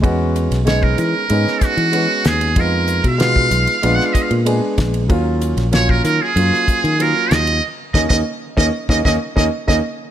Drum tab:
RD |x-xxx-x-x-xxx-xx|x-xxx-xxx-xxx-xx|x-xxx-x-x-xxx-xx|----------------|
HH |--p---p---p---p-|--p---p---p---p-|--p---p---p---p-|----------------|
SD |---oo----oo---o-|----o----o----o-|---oo----o----o-|--oo--o-oo-o-o--|
BD |o----o----o-----|o--o-o----o---o-|o----o----o-----|--oo--o-oo-o-o--|